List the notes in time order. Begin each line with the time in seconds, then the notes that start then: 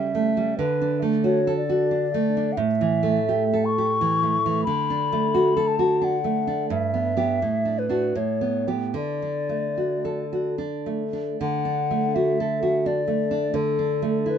Already playing: C#3 G3 E5
0.15 A3
0.37 G3
0.58 D3 B4
0.81 D4
1.02 A3
1.24 F#4 C#5
1.47 A4
1.57 D5
1.69 F#4
1.91 D4
2.14 A3
2.37 D4
2.53 F#5
2.57 A2 E5
2.81 E3
3.03 A3
3.29 G4
3.53 A4
3.65 C#6
3.78 G4
4.01 E3
4.23 A3
4.46 E3
4.64 D3 B5
4.90 D4
5.12 A3
5.34 F#4
5.57 A4
5.67 A5
5.79 F#4
6.01 D4 F#5
6.24 A3
6.47 D4
6.70 G2 E5
6.94 B3
7.17 B3 G4
7.42 A2
7.65 D4
7.79 B4
7.89 D4 F#4
8.15 A2 C#5
8.41 B3
8.67 B3 G4
8.94 D3 D5
9.22 D4
9.49 A3
9.78 F#4
10.05 A4
10.33 F#4
10.58 D4
10.86 A3
11.13 D4
11.41 D3 F#5
11.65 D4
11.91 A3
12.15 F#4 E5
12.40 A4
12.63 F#4
12.86 D4 D5
13.07 A3
13.31 D4
13.54 D3 A4
13.79 D4
14.02 A3
14.26 E4 B4